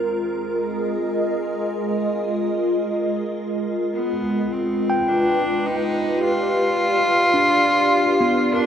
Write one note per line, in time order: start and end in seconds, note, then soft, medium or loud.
0.00 5.77 G#3 medium
0.00 8.66 F4 medium
0.00 3.91 G#4 medium
0.00 3.92 A#4 medium
0.35 3.92 D#5 medium
3.94 4.54 B3 medium
4.52 5.09 C4 medium
4.52 8.54 B4 medium
4.90 7.37 G5 medium
5.08 5.67 D4 medium
5.66 6.23 D#4 medium
5.76 8.66 G4 medium
6.00 8.66 D5 medium
6.24 8.55 F4 loud
7.34 8.44 D4 medium
8.21 8.66 B3 medium
8.54 8.66 D4 loud
8.54 8.66 A#4 medium